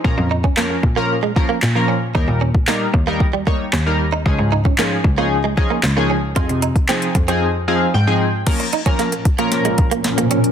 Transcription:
<<
  \new Staff \with { instrumentName = "Synth keys" } { \time 4/4 \key bes \dorian \tempo 4 = 114 << { r1 | r1 | r1 | r2 r8 f''8 g''4 |
r1 | } \\ { <f bes des' bes'>8 r8 <f bes des' bes'>16 r8 <f bes des' bes'>16 r8 <f bes des' bes'>16 r8 <f bes des' bes'>16 r8 | <g bes ees' bes'>8 r8 <g bes ees' bes'>16 r8 <g bes ees' bes'>16 r8 <g bes ees' des''>16 r8 <g bes ees' bes'>16 r8 | <f des' ees' aes'>8 r8 <f des' ees' aes'>16 r8 <f des' ees' aes'>16 r8 <f des' ees' aes'>16 r8 <f des' ees' aes'>16 r8 | <f c' ees' aes'>8 r8 <f c' ees' aes'>16 r8 <f c' ees' aes'>16 r8 <f c' ees' aes'>16 r8 <f c' ees' aes'>16 r8 |
<f bes des' bes'>16 r8 <f bes des' bes'>8 r8 <f bes des' bes'>4 r4 r16 | } >> }
  \new Staff \with { instrumentName = "Clean electric guitar" } { \time 4/4 \key bes \dorian r8 ees'16 des'16 bes16 r8 bes16 r16 aes16 r16 bes16 r16 bes16 des'16 r16 | ees'16 r16 des'16 r16 bes16 r8 bes16 r16 g16 bes16 r16 des'16 r8 ees'16 | r8 ees'16 des'16 bes16 r8 bes16 r16 aes16 r16 bes16 r16 bes16 des'16 r16 | f'16 r16 ees'16 r16 c'16 r8 c'16 r2 |
r8 ees'16 des'16 bes16 r8 bes16 r16 aes16 r16 bes16 r16 bes16 des'16 r16 | }
  \new Staff \with { instrumentName = "Ambient pad" } { \time 4/4 \key bes \dorian r1 | r1 | r1 | r1 |
<bes, f des' bes'>1 | }
  \new Staff \with { instrumentName = "Cello" } { \clef bass \time 4/4 \key bes \dorian bes,16 f,4~ f,16 bes,4. bes,4 | ees,16 bes,4~ bes,16 ees,4. ees,4 | des,16 aes,4~ aes,16 des,4. des,4 | f,16 c4~ c16 f,4. aes,4 |
r1 | }
  \new DrumStaff \with { instrumentName = "Drums" } \drummode { \time 4/4 bd8. bd16 <hc sn>8 bd8 r8 bd8 <hc sn>4 | bd8. bd16 <hc sn>8 bd8 bd8 bd8 <hc sn>4 | bd8. bd16 <hc sn>8 bd8 r8 bd8 <hc sn>4 | <hh bd>16 hh16 hh16 <hh bd>16 <hc hh sn>16 hh16 <hh bd>16 hh16 r4 r4 |
<cymc hh bd sn>16 hh16 hh16 <hh bd>16 <hh sn>16 hh16 <hh bd>16 hh16 <hh sn>16 hh16 <hh bd>16 hh16 <hh sn>16 hh16 hh16 hh16 | }
>>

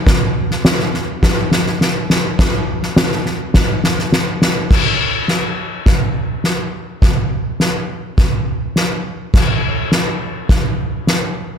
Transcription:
\new DrumStaff \with { instrumentName = "Drums" } \drummode { \time 4/4 \tempo 4 = 104 <bd sn>8. sn16 sn16 sn16 sn8 <bd sn>8 sn16 sn16 sn8 sn8 | <bd sn>8. sn16 sn16 sn16 sn8 <bd sn>8 sn16 sn16 sn8 sn8 | <cymc bd sn>4 sn4 <bd sn>4 sn4 | <bd sn>4 sn4 <bd sn>4 sn4 |
<cymc bd sn>4 sn4 <bd sn>4 sn4 | }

